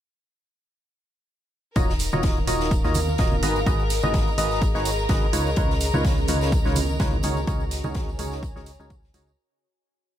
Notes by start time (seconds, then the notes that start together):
1.76 D#1 D#3 D#4 F4 F#4 A#4 C#5 D#5 A#5, kick, closed hi-hat, tambourine
1.89 snare, tambourine
1.99 snare, closed hi-hat, open hi-hat, tambourine
2.12 D#1 D#3 F4 F#4 A#4 C#5 D#5, tambourine, high conga
2.23 kick, snare, closed hi-hat, tambourine
2.37 tambourine
2.46 D#1 D#3 F4 F#4 A#4 C#5 D#5, closed hi-hat, open hi-hat, tambourine
2.51 F5
2.60 snare, tambourine
2.71 kick, closed hi-hat, tambourine
2.84 D#2 D#3 F4 F#4 A#4 C#5 D#5, snare, tambourine
2.94 closed hi-hat, open hi-hat, tambourine, high conga
3.09 tambourine
3.18 D#1 F4 F#4 A#4 C#5 D#5, kick, snare, closed hi-hat, tambourine
3.32 tambourine, high conga
3.43 G#1 G#3 D#4 F#4 G#4 B4 D#5, closed hi-hat, open hi-hat, tambourine
3.56 tambourine
3.66 G#1 G#3 D#4 F#4 G#4 B4 D#5, kick, closed hi-hat, tambourine
3.79 tambourine
3.88 D#5, snare, closed hi-hat, open hi-hat, tambourine
4.03 G#1 G#3 D#4 F#4 G#4 B4 D#5, tambourine, high conga
4.14 kick, snare, closed hi-hat, tambourine
4.28 A#5, tambourine
4.38 G#1 G#3 D#4 F#4 G#4 B4 D#5, closed hi-hat, open hi-hat, tambourine
4.50 snare, tambourine
4.62 kick, closed hi-hat, tambourine
4.75 G#1 G#3 D#4 F#4 G#4 B4 C#5, snare, tambourine
4.85 snare, closed hi-hat, open hi-hat, tambourine
4.99 tambourine
5.09 G#1 C#3 D#4 F#4 G#4 B4 D#5, kick, snare, closed hi-hat, tambourine
5.22 tambourine
5.33 C#2 C#3 C#4 D#4 F4 A#4 B4 C#5, closed hi-hat, open hi-hat, tambourine
5.46 tambourine
5.56 C#2 C#3 D#4 F4 A#4 B4 C#5, kick, closed hi-hat, tambourine
5.70 snare, tambourine
5.80 snare, closed hi-hat, open hi-hat, tambourine
5.94 C#2 C#3 D#4 F4 A#4 B4 C#5, tambourine, high conga
6.04 kick, snare, closed hi-hat, tambourine
6.18 tambourine
6.28 C#2 C#3 D#4 F4 A#4 B4 C#5, closed hi-hat, open hi-hat, tambourine
6.41 snare, tambourine
6.52 kick, closed hi-hat, tambourine
6.65 C#2 C#3 D#4 F4 A#4 B4 C#5, snare, tambourine
6.76 closed hi-hat, open hi-hat, tambourine, high conga
6.89 tambourine
7.00 C#2 C#3 D#4 F4 A#4 B4 C#5, kick, snare, closed hi-hat, tambourine
7.13 tambourine, high conga
7.23 C#2 C#3 D#4 F#4 G#4 A#4 C#5, closed hi-hat, open hi-hat, tambourine
7.37 tambourine
7.47 C#2 C#3 D#4 F#4 G#4 A#4 C#5, kick, closed hi-hat, tambourine
7.60 tambourine
7.71 snare, closed hi-hat, open hi-hat, tambourine
7.84 C#2 C#3 D#4 F#4 G#4 A#4 C#5, tambourine, high conga
7.94 G#5, kick, snare, closed hi-hat, tambourine
8.09 tambourine
8.19 C#2 C#3 D#4 F#4 G#4 A#4 C#5, closed hi-hat, open hi-hat, tambourine
8.31 snare, tambourine
8.43 kick, closed hi-hat, tambourine
8.56 C#2 C#3 D#4 F#4 G#4 A#4 C#5, snare, tambourine
8.66 snare, closed hi-hat, open hi-hat, tambourine
8.80 C#2 C#3 D#4 F#4 G#4 A#4 C#5, tambourine
8.90 kick, closed hi-hat, tambourine
9.03 snare, tambourine
9.14 C#2 C#3 D#4 F#4 G#4 A#4 C#5, snare, closed hi-hat, open hi-hat, tambourine
9.27 tambourine